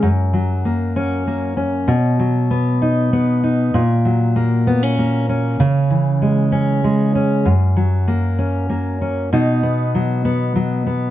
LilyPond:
\new Staff \with { instrumentName = "Steel-string acoustic guitar" } { \time 6/8 \key b \major \tempo 4. = 65 fis,8 fis8 ais8 cis'8 ais8 cis'8 | b,8 fis8 b8 dis'8 b8 dis'8 | ais,8 fis8 ais8 b16 cis'16 ais8 cis'8 | cis8 e8 gis8 cis'8 gis8 cis'8 |
fis,8 fis8 ais8 cis'8 ais8 cis'8 | <b, dis'>8 b8 fis8 b8 fis8 b8 | }